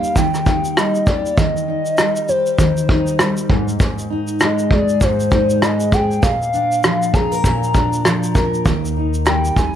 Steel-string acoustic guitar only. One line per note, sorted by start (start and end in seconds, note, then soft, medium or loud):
0.00 0.15 D#3 medium
0.00 0.77 G3 medium
0.00 1.54 A#3 medium
0.00 0.46 D#4 soft
0.00 1.07 G4 medium
0.16 1.37 D#3 medium
0.47 1.68 D#4 soft
0.77 1.98 G3 medium
1.07 2.28 G4 medium
1.37 2.58 D#3 medium
1.68 2.89 D#4 medium
1.98 3.18 G3 medium
2.29 3.57 G4 medium
2.59 6.09 D#3 medium
2.89 4.10 D#4 medium
3.19 3.57 G3 medium
3.49 3.78 G#2 medium
3.80 5.01 G#2 medium
4.10 5.31 D#4 medium
4.41 5.61 G#3 medium
4.72 5.91 G#4 medium
5.02 6.23 G#2 medium
5.32 6.30 D#4 medium
5.62 6.30 G#3 medium
5.92 6.30 G#4 medium
6.23 7.43 A#2 medium
6.54 7.73 D4 medium
6.84 8.04 F3 medium
7.14 7.32 G#4 medium
7.32 8.34 A#4 soft
7.45 8.73 A#2 medium
7.75 8.73 D4 medium
8.05 8.73 F3 medium
8.36 9.75 A#4 medium
8.66 9.75 D#3 medium
8.97 9.75 D#4 soft
9.26 9.75 G3 medium